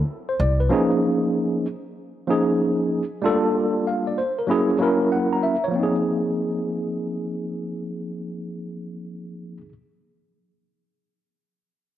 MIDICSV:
0, 0, Header, 1, 3, 480
1, 0, Start_track
1, 0, Key_signature, -4, "major"
1, 0, Tempo, 631579
1, 540, Time_signature, 4, 2, 24, 8
1, 9104, End_track
2, 0, Start_track
2, 0, Title_t, "Tine electric piano"
2, 0, Program_c, 0, 4
2, 219, Note_on_c, 0, 72, 63
2, 297, Note_off_c, 0, 72, 0
2, 303, Note_on_c, 0, 74, 70
2, 451, Note_off_c, 0, 74, 0
2, 457, Note_on_c, 0, 71, 57
2, 526, Note_on_c, 0, 53, 88
2, 535, Note_on_c, 0, 58, 81
2, 541, Note_on_c, 0, 61, 82
2, 549, Note_on_c, 0, 63, 84
2, 555, Note_on_c, 0, 68, 85
2, 685, Note_off_c, 0, 71, 0
2, 1253, Note_off_c, 0, 53, 0
2, 1257, Note_off_c, 0, 58, 0
2, 1260, Note_off_c, 0, 61, 0
2, 1264, Note_off_c, 0, 63, 0
2, 1267, Note_off_c, 0, 68, 0
2, 1726, Note_on_c, 0, 53, 76
2, 1731, Note_on_c, 0, 58, 67
2, 1737, Note_on_c, 0, 61, 68
2, 1746, Note_on_c, 0, 63, 79
2, 1752, Note_on_c, 0, 68, 93
2, 2291, Note_off_c, 0, 53, 0
2, 2294, Note_off_c, 0, 58, 0
2, 2297, Note_off_c, 0, 61, 0
2, 2301, Note_off_c, 0, 63, 0
2, 2304, Note_off_c, 0, 68, 0
2, 2445, Note_on_c, 0, 55, 83
2, 2452, Note_on_c, 0, 57, 63
2, 2461, Note_on_c, 0, 62, 79
2, 2466, Note_on_c, 0, 65, 76
2, 2473, Note_on_c, 0, 69, 96
2, 2500, Note_on_c, 0, 58, 68
2, 2521, Note_off_c, 0, 57, 0
2, 2943, Note_on_c, 0, 77, 46
2, 2947, Note_off_c, 0, 69, 0
2, 3091, Note_off_c, 0, 77, 0
2, 3095, Note_on_c, 0, 74, 57
2, 3172, Note_off_c, 0, 55, 0
2, 3175, Note_off_c, 0, 74, 0
2, 3176, Note_on_c, 0, 72, 60
2, 3180, Note_off_c, 0, 62, 0
2, 3183, Note_off_c, 0, 65, 0
2, 3200, Note_off_c, 0, 58, 0
2, 3328, Note_off_c, 0, 72, 0
2, 3333, Note_on_c, 0, 70, 47
2, 3397, Note_on_c, 0, 54, 83
2, 3403, Note_on_c, 0, 58, 70
2, 3412, Note_on_c, 0, 61, 74
2, 3419, Note_on_c, 0, 64, 76
2, 3427, Note_on_c, 0, 68, 96
2, 3563, Note_off_c, 0, 70, 0
2, 3615, Note_off_c, 0, 54, 0
2, 3619, Note_off_c, 0, 58, 0
2, 3623, Note_off_c, 0, 61, 0
2, 3626, Note_off_c, 0, 64, 0
2, 3630, Note_off_c, 0, 68, 0
2, 3640, Note_on_c, 0, 54, 75
2, 3648, Note_on_c, 0, 58, 65
2, 3655, Note_on_c, 0, 61, 71
2, 3661, Note_on_c, 0, 64, 70
2, 3669, Note_on_c, 0, 70, 80
2, 3892, Note_on_c, 0, 78, 57
2, 4048, Note_on_c, 0, 82, 63
2, 4124, Note_off_c, 0, 78, 0
2, 4128, Note_on_c, 0, 76, 64
2, 4208, Note_off_c, 0, 54, 0
2, 4212, Note_off_c, 0, 58, 0
2, 4216, Note_off_c, 0, 61, 0
2, 4219, Note_off_c, 0, 64, 0
2, 4223, Note_off_c, 0, 70, 0
2, 4283, Note_off_c, 0, 76, 0
2, 4286, Note_on_c, 0, 73, 58
2, 4316, Note_on_c, 0, 53, 75
2, 4343, Note_on_c, 0, 58, 69
2, 4353, Note_off_c, 0, 82, 0
2, 4374, Note_on_c, 0, 60, 65
2, 4404, Note_on_c, 0, 63, 69
2, 4432, Note_on_c, 0, 68, 79
2, 4520, Note_off_c, 0, 73, 0
2, 7273, Note_off_c, 0, 53, 0
2, 7300, Note_off_c, 0, 58, 0
2, 7332, Note_off_c, 0, 60, 0
2, 7361, Note_off_c, 0, 63, 0
2, 7389, Note_off_c, 0, 68, 0
2, 9104, End_track
3, 0, Start_track
3, 0, Title_t, "Upright bass"
3, 0, Program_c, 1, 32
3, 301, Note_on_c, 1, 36, 89
3, 511, Note_off_c, 1, 36, 0
3, 9104, End_track
0, 0, End_of_file